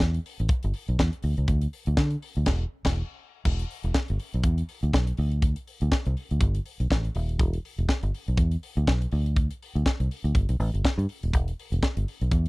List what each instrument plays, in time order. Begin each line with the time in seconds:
0.00 fingered electric bass E2, kick, snare
0.14 closed hi-hat
0.26 open hi-hat
0.39 fingered electric bass A1, closed hi-hat
0.49 kick, closed hi-hat
0.63 fingered electric bass G1, closed hi-hat
0.74 open hi-hat
0.88 fingered electric bass B1, closed hi-hat
0.99 fingered electric bass E2, kick, snare
1.13 closed hi-hat
1.23 fingered electric bass D2, open hi-hat
1.37 fingered electric bass C#2, closed hi-hat
1.48 fingered electric bass D2, kick, closed hi-hat
1.61 closed hi-hat
1.73 open hi-hat
1.86 fingered electric bass D2, closed hi-hat
1.97 fingered electric bass D3, kick, snare
2.11 closed hi-hat
2.22 open hi-hat
2.36 fingered electric bass D2, closed hi-hat
2.46 fingered electric bass E1, kick, snare, crash
2.85 fingered electric bass E1, kick, snare, crash
3.45 fingered electric bass E1, kick, crash
3.59 closed hi-hat
3.71 open hi-hat
3.83 fingered electric bass E1, closed hi-hat
3.94 kick, snare
4.08 fingered electric bass G1, closed hi-hat
4.20 open hi-hat
4.34 fingered electric bass B1, closed hi-hat
4.43 fingered electric bass E2, kick, closed hi-hat
4.58 closed hi-hat
4.69 open hi-hat
4.83 fingered electric bass D2, closed hi-hat
4.93 fingered electric bass B1, kick, snare
5.07 closed hi-hat
5.17 fingered electric bass D2, open hi-hat
5.32 closed hi-hat
5.42 kick, closed hi-hat
5.56 closed hi-hat
5.67 open hi-hat
5.81 fingered electric bass D2, closed hi-hat
5.92 kick, snare
6.05 fingered electric bass C2, closed hi-hat
6.17 open hi-hat
6.31 fingered electric bass D2, closed hi-hat
6.41 fingered electric bass G1, kick, closed hi-hat
6.55 closed hi-hat
6.66 open hi-hat
6.80 fingered electric bass B1, closed hi-hat
6.91 fingered electric bass A1, kick, snare
7.05 closed hi-hat
7.15 fingered electric bass D#1, open hi-hat
7.29 closed hi-hat
7.39 fingered electric bass E1, kick, closed hi-hat
7.54 closed hi-hat
7.65 open hi-hat
7.78 fingered electric bass E1, closed hi-hat
7.89 kick, snare
8.03 fingered electric bass G1, closed hi-hat
8.15 open hi-hat
8.28 fingered electric bass B1, closed hi-hat
8.37 fingered electric bass E2, kick, closed hi-hat
8.51 closed hi-hat
8.63 open hi-hat
8.77 fingered electric bass D2, closed hi-hat
8.87 fingered electric bass B1, kick, snare
9.02 closed hi-hat
9.12 fingered electric bass D2, open hi-hat
9.26 closed hi-hat
9.36 kick, closed hi-hat
9.51 closed hi-hat
9.62 open hi-hat
9.75 fingered electric bass D2, closed hi-hat
9.86 kick, snare
10.00 fingered electric bass C2, closed hi-hat
10.11 open hi-hat
10.24 fingered electric bass D2, closed hi-hat
10.35 fingered electric bass G1, kick, closed hi-hat
10.49 fingered electric bass B1, closed hi-hat
10.60 fingered electric bass A1, open hi-hat
10.74 fingered electric bass G1, closed hi-hat
10.85 kick, snare
10.98 fingered electric bass G2, closed hi-hat
11.09 open hi-hat
11.23 fingered electric bass D#1, closed hi-hat
11.34 fingered electric bass E1, kick, closed hi-hat
11.48 closed hi-hat
11.59 open hi-hat
11.72 fingered electric bass E1, closed hi-hat
11.83 kick, snare
11.97 fingered electric bass G1, closed hi-hat
12.08 open hi-hat
12.21 fingered electric bass B1, closed hi-hat
12.31 fingered electric bass E2, kick, closed hi-hat